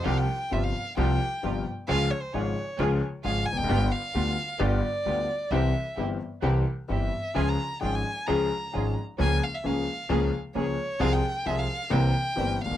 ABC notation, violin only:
X:1
M:4/4
L:1/16
Q:1/4=132
K:Cphr
V:1 name="Violin"
f g3 =e f3 g6 z2 | f2 d c d6 z2 f2 a g- | g2 f6 =d8 | =e4 z8 e4 |
a b3 g a3 b6 z2 | a2 f =e f6 z2 d4 | f g3 =e f3 g6 f2 |]